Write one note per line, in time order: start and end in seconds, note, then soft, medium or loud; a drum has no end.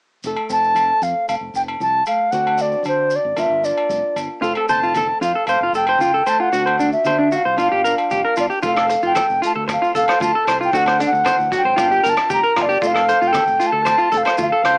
0.23 0.34 F1 medium
0.23 0.71 F2 medium
0.23 2.06 A3 medium
0.23 2.32 A4 medium
0.23 muted nylon-string guitar stroke medium
0.23 maracas medium
0.36 low agogo medium
0.50 0.91 F1 medium
0.50 2.31 C4 soft
0.50 1.05 A5 medium
0.50 maracas medium
0.63 maracas soft
0.75 1.23 F3 medium
0.75 low agogo medium
0.75 maracas medium
1.02 1.12 F2 medium
1.02 1.28 F5 medium
1.02 maracas medium
1.28 1.39 F1 medium
1.28 1.75 C3 medium
1.28 1.35 F5 medium
1.28 low agogo medium
1.28 maracas medium
1.41 1.51 F1 medium
1.54 1.75 F1 medium
1.54 1.62 G5 medium
1.54 maracas medium
1.68 low agogo medium
1.80 2.01 C2 medium
1.80 2.28 F3 soft
1.80 2.06 A5 medium
1.80 maracas medium
2.06 2.30 A3 medium
2.06 2.33 F5 medium
2.06 low agogo medium
2.06 maracas medium
2.31 2.74 D2 medium
2.31 2.80 D3 medium
2.31 3.35 C4 medium
2.31 2.56 D4 medium
2.31 3.36 F#4 medium
2.31 2.63 F#5 medium
2.31 maracas soft
2.47 low agogo medium
2.57 3.34 D4 medium
2.57 maracas medium
2.62 2.87 D5 medium
2.72 maracas soft
2.83 3.17 D3 medium
2.83 3.32 F#3 medium
2.83 low agogo medium
2.83 maracas soft
2.88 3.17 C5 medium
3.10 maracas medium
3.16 3.41 D5 medium
3.25 3.35 G#1 medium
3.36 3.48 G1 medium
3.36 3.85 G2 medium
3.36 4.39 A#3 soft
3.36 3.62 D4 soft
3.36 4.43 F4 medium
3.36 3.66 E5 medium
3.36 low agogo medium
3.36 maracas medium
3.50 3.71 G1 medium
3.64 4.40 D4 medium
3.64 4.17 D5 medium
3.64 maracas medium
3.78 low agogo medium
3.89 4.01 F1 medium
3.89 4.38 G3 medium
3.89 maracas medium
4.16 4.27 G1 medium
4.16 low agogo medium
4.16 maracas medium
4.42 4.53 F1 medium
4.42 4.90 F2 medium
4.42 6.25 A3 medium
4.42 4.68 C4 medium
4.42 4.52 F4 medium
4.42 6.50 A4 medium
4.42 muted conga soft
4.42 maracas medium
4.55 4.66 A4 medium
4.55 low agogo medium
4.69 5.10 F1 medium
4.69 6.51 C4 medium
4.69 4.79 C5 medium
4.69 5.18 A5 loud
4.69 muted conga soft
4.69 high conga medium
4.69 maracas medium
4.83 4.92 F4 medium
4.83 maracas soft
4.94 5.43 F3 soft
4.94 5.06 A4 medium
4.94 high conga medium
4.94 low agogo medium
4.94 maracas medium
5.21 5.32 F2 medium
5.21 5.31 F4 medium
5.21 5.47 F5 medium
5.21 maracas medium
5.35 5.45 A4 medium
5.46 5.58 F1 medium
5.46 5.95 C3 medium
5.46 5.58 C5 medium
5.46 5.72 F5 medium
5.46 muted conga soft
5.46 low agogo medium
5.46 maracas medium
5.60 5.71 F1 medium
5.60 5.72 F4 medium
5.73 5.94 F1 medium
5.73 5.84 A4 medium
5.73 6.30 G5 medium
5.73 maracas medium
5.87 5.98 C5 medium
5.87 low agogo medium
5.98 6.20 C#2 medium
5.98 6.48 F3 medium
5.98 6.10 F4 medium
5.98 high conga medium
5.98 maracas medium
6.14 6.23 A4 medium
6.26 6.50 A3 medium
6.26 6.36 C5 medium
6.26 6.42 A5 medium
6.26 muted conga soft
6.26 low agogo medium
6.26 maracas medium
6.40 6.49 F4 medium
6.40 6.92 F#5 medium
6.52 6.94 D2 medium
6.52 7.00 D3 medium
6.52 7.55 C4 medium
6.52 6.76 D4 medium
6.52 6.62 F#4 medium
6.52 7.56 F#4 medium
6.52 maracas medium
6.66 6.75 C5 medium
6.66 low agogo medium
6.77 7.54 D4 medium
6.77 6.89 D4 medium
6.77 muted conga soft
6.77 high conga medium
6.77 maracas medium
6.92 7.37 E5 medium
6.92 maracas soft
7.04 7.36 D3 medium
7.04 7.16 C5 medium
7.04 high conga medium
7.04 low agogo medium
7.04 maracas medium
7.18 7.28 D4 medium
7.32 7.42 F#4 medium
7.32 8.39 F5 medium
7.32 low conga medium
7.32 maracas medium
7.45 7.56 C2 medium
7.45 7.54 C5 medium
7.56 7.69 G1 medium
7.56 8.05 G2 medium
7.56 8.60 A#3 medium
7.56 7.84 D4 medium
7.56 7.68 F4 medium
7.56 8.66 F4 medium
7.56 muted conga soft
7.56 low agogo medium
7.56 maracas medium
7.72 7.93 G1 medium
7.72 7.81 G4 medium
7.84 8.61 D4 medium
7.84 7.94 A#4 medium
7.84 maracas medium
7.98 low agogo medium
7.98 maracas soft
8.11 8.21 F1 medium
8.11 8.59 G3 medium
8.11 8.20 G4 medium
8.11 high conga medium
8.11 maracas medium
8.25 8.34 A#4 medium
8.36 8.48 G1 medium
8.36 8.46 F4 medium
8.36 8.46 D5 medium
8.36 muted conga soft
8.36 low agogo medium
8.36 maracas medium
8.50 8.59 G4 medium
8.50 maracas soft
8.62 8.95 F1 medium
8.62 9.10 F2 medium
8.62 9.43 A3 medium
8.62 9.69 C4 medium
8.62 8.72 F4 medium
8.62 8.89 A4 medium
8.62 kick medium
8.62 maracas medium
8.68 9.03 F5 medium
8.76 8.86 A4 medium
8.76 cross-stick medium
8.76 low agogo medium
8.90 9.95 A4 medium
8.90 muted clean electric guitar stroke medium
8.90 closed hi-hat soft
8.90 muted conga soft
8.90 maracas medium
9.02 9.13 F1 medium
9.02 9.12 F4 medium
9.02 maracas soft
9.07 9.41 G5 medium
9.15 9.64 F3 medium
9.15 9.25 A4 medium
9.15 kick medium
9.15 cross-stick medium
9.15 high conga medium
9.15 low agogo medium
9.15 maracas medium
9.30 9.40 F1 medium
9.30 maracas soft
9.42 10.71 A3 medium
9.42 9.51 F4 medium
9.42 closed hi-hat soft
9.42 maracas medium
9.46 9.52 A5 medium
9.55 9.76 D2 medium
9.55 9.64 A4 medium
9.68 10.16 C3 medium
9.68 10.46 C4 medium
9.68 muted clean electric guitar stroke medium
9.68 kick medium
9.68 cross-stick medium
9.68 muted conga soft
9.68 low agogo medium
9.68 maracas medium
9.73 9.95 F5 medium
9.82 9.91 F4 medium
9.82 maracas soft
9.94 10.05 F1 medium
9.94 10.04 A4 medium
9.94 10.71 A4 medium
9.94 10.20 F5 medium
9.94 closed hi-hat soft
9.94 high conga medium
9.94 maracas medium
10.08 10.18 C5 medium
10.08 cross-stick medium
10.08 low agogo medium
10.08 maracas soft
10.20 10.32 D2 medium
10.20 10.68 F3 medium
10.20 10.31 F4 medium
10.20 10.58 A5 medium
10.20 kick medium
10.20 high conga medium
10.20 maracas medium
10.35 10.44 A4 medium
10.47 10.68 C2 medium
10.47 10.72 C4 medium
10.47 10.57 C5 medium
10.47 cross-stick medium
10.47 closed hi-hat soft
10.47 muted conga soft
10.47 low agogo medium
10.47 maracas medium
10.61 10.70 F4 medium
10.61 10.78 G5 medium
10.61 maracas soft
10.72 11.04 D2 medium
10.72 11.20 D3 medium
10.72 11.74 C4 medium
10.72 11.75 D4 medium
10.72 10.83 F#4 medium
10.72 10.98 A4 medium
10.72 kick medium
10.72 maracas medium
10.77 11.01 F#5 loud
10.86 10.96 C5 medium
10.86 cross-stick medium
10.86 low agogo medium
10.99 11.09 D4 medium
10.99 11.74 A4 medium
10.99 closed hi-hat soft
10.99 muted conga soft
10.99 maracas medium
11.07 11.52 F#5 medium
11.12 11.22 D2 medium
11.12 maracas soft
11.24 11.51 E3 medium
11.24 11.35 C5 medium
11.24 kick medium
11.24 cross-stick medium
11.24 high conga medium
11.24 low agogo medium
11.24 maracas medium
11.39 11.49 D2 medium
11.39 maracas soft
11.51 11.77 F#3 medium
11.51 11.61 F#4 medium
11.51 kick medium
11.51 closed hi-hat soft
11.51 low conga medium
11.51 maracas medium
11.57 12.11 G5 loud
11.65 11.75 G#1 medium
11.65 11.74 C5 medium
11.76 11.98 G1 medium
11.76 12.24 G2 medium
11.76 12.56 A#3 medium
11.76 12.80 D4 medium
11.76 11.86 F4 medium
11.76 12.04 F4 medium
11.76 kick medium
11.76 cross-stick medium
11.76 muted conga soft
11.76 low agogo medium
11.76 maracas medium
11.91 12.00 G4 medium
11.91 maracas soft
12.04 12.15 G1 medium
12.04 12.83 F4 medium
12.04 12.13 A#4 medium
12.04 closed hi-hat soft
12.04 high conga medium
12.04 maracas medium
12.09 12.33 A5 medium
12.17 cross-stick medium
12.17 low agogo medium
12.17 maracas soft
12.30 12.41 F1 medium
12.30 12.78 G3 medium
12.30 12.39 G4 medium
12.30 12.64 A#5 medium
12.30 kick medium
12.30 high conga medium
12.30 maracas medium
12.44 12.52 A#4 medium
12.56 12.77 G1 medium
12.56 12.80 A#3 medium
12.56 12.66 F4 medium
12.56 cross-stick medium
12.56 closed hi-hat soft
12.56 muted conga soft
12.56 low conga medium
12.56 low agogo medium
12.62 12.89 D5 medium
12.69 12.78 G4 medium
12.69 maracas soft
12.81 13.13 F1 medium
12.81 13.29 F2 medium
12.81 13.60 A3 medium
12.81 13.86 C4 medium
12.81 12.91 F4 medium
12.81 13.07 A4 medium
12.81 kick medium
12.81 muted conga soft
12.81 maracas medium
12.87 13.29 F5 loud
12.95 13.04 A4 medium
12.95 cross-stick medium
12.95 low agogo medium
13.08 14.13 A4 medium
13.08 13.18 C5 medium
13.08 closed hi-hat soft
13.08 muted conga soft
13.08 maracas medium
13.22 13.32 F1 medium
13.22 13.31 F4 medium
13.22 maracas soft
13.28 13.68 G5 medium
13.33 13.82 F3 medium
13.33 13.43 A4 medium
13.33 kick medium
13.33 cross-stick medium
13.33 high conga medium
13.33 low agogo medium
13.33 maracas medium
13.47 13.57 F1 medium
13.47 maracas soft
13.60 14.78 A3 medium
13.60 13.69 F4 medium
13.60 closed hi-hat soft
13.60 maracas medium
13.67 14.19 A5 loud
13.72 13.94 D2 medium
13.72 13.82 A4 medium
13.85 14.34 C3 medium
13.85 14.65 C4 medium
13.85 13.95 C5 medium
13.85 kick medium
13.85 cross-stick medium
13.85 muted conga soft
13.85 low agogo medium
13.85 maracas medium
13.98 14.08 F4 medium
13.98 maracas soft
14.11 14.23 F1 medium
14.11 14.21 A4 medium
14.11 14.78 A4 medium
14.11 closed hi-hat soft
14.11 high conga medium
14.11 maracas medium
14.17 14.41 F5 medium
14.25 14.35 C5 medium
14.25 cross-stick medium
14.25 low agogo medium
14.25 maracas soft
14.38 14.49 D2 loud
14.38 14.78 F3 medium
14.38 14.48 F4 medium
14.38 14.78 F5 medium
14.38 kick medium
14.38 high conga medium
14.38 maracas medium
14.52 14.61 A4 medium
14.64 14.78 C#2 medium
14.64 14.75 C5 medium
14.64 cross-stick medium
14.64 closed hi-hat medium
14.64 muted conga soft
14.64 low agogo medium
14.69 14.78 C4 medium